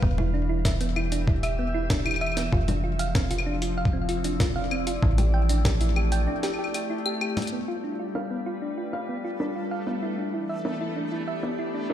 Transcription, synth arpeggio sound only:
0.02 0.08 B3 medium
0.18 0.27 E4 loud
0.34 0.47 D4 medium
0.49 0.63 E4 medium
0.65 0.74 E5 loud
0.81 0.86 B3 medium
0.96 1.05 E4 loud
1.12 1.25 D4 medium
1.28 1.41 E4 medium
1.43 1.52 E5 loud
1.59 1.64 B3 medium
1.74 1.83 E4 loud
1.90 2.04 D4 medium
2.06 2.19 E4 medium
2.21 2.30 E5 loud
2.37 2.42 B3 medium
2.53 2.62 F4 loud
2.68 2.82 D4 medium
2.84 2.97 F4 medium
2.99 3.08 F5 loud
3.15 3.20 C4 medium
3.31 3.40 F4 loud
3.46 3.60 D4 medium
3.62 3.75 F4 medium
3.78 3.87 F5 loud
3.93 3.99 C4 medium
4.09 4.18 F4 loud
4.24 4.38 D4 medium
4.40 4.54 F4 medium
4.56 4.65 F5 loud
4.71 4.77 C4 medium
4.87 4.96 F4 loud
5.03 5.16 E4 medium
5.18 5.32 G4 medium
5.34 5.43 G5 loud
5.49 5.55 D4 medium
5.65 5.74 G4 loud
5.81 5.94 E4 medium
5.96 6.10 G4 medium
6.12 6.21 G5 loud
6.28 6.33 D4 medium
6.43 6.52 G4 loud
6.59 6.72 G4 loud
6.74 6.83 G4 medium
6.90 6.99 E4 medium
7.06 7.11 G4 loud
7.21 7.30 G4 medium
7.53 7.58 B3 medium
7.68 7.77 F4 loud
7.84 7.97 D4 medium
7.99 8.13 F4 medium
8.15 8.24 F5 medium
8.31 8.36 B3 medium
8.46 8.55 F4 loud
8.62 8.75 D4 medium
8.78 8.91 F4 medium
8.93 9.02 F5 loud
9.09 9.14 B3 medium
9.24 9.33 F4 loud
9.40 9.54 D4 medium
9.56 9.69 F4 medium
9.71 9.80 F5 loud
9.87 9.92 B3 medium
10.03 10.12 E4 loud
10.18 10.32 D4 medium
10.34 10.47 E4 medium
10.49 10.58 E5 loud
10.65 10.70 B3 medium
10.81 10.90 E4 loud
10.96 11.10 D4 medium
11.12 11.25 E4 medium
11.28 11.37 E5 loud
11.43 11.49 B3 medium
11.59 11.68 E4 loud
11.74 11.88 D4 medium
11.90 11.93 E4 medium

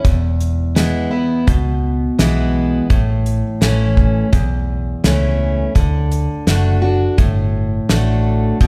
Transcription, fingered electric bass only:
0.05 1.06 E1 medium
1.48 2.08 C#2 medium
2.19 2.80 B1 medium
2.90 3.41 A1 medium
3.61 4.22 A1 medium
4.33 4.94 B1 medium
5.04 5.65 C#2 medium
5.76 6.27 D2 medium
6.47 7.07 F#1 medium
7.19 7.79 G1 medium
7.90 8.51 A1 medium
8.61 8.67 B1 medium

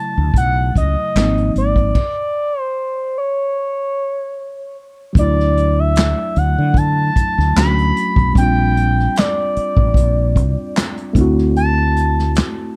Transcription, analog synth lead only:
0.00 0.36 A5 loud
0.38 0.74 F#5 loud
0.78 1.52 D#5 loud
1.58 2.61 D5 loud
2.61 3.19 C5 loud
3.18 4.77 C#5 medium
5.19 5.81 D5 loud
5.79 6.39 E5 loud
6.38 6.79 F#5 medium
6.77 7.56 A5 loud
7.58 8.32 B5 loud
8.38 9.19 G5 loud
9.18 10.76 D5 medium
11.57 12.32 A5 loud

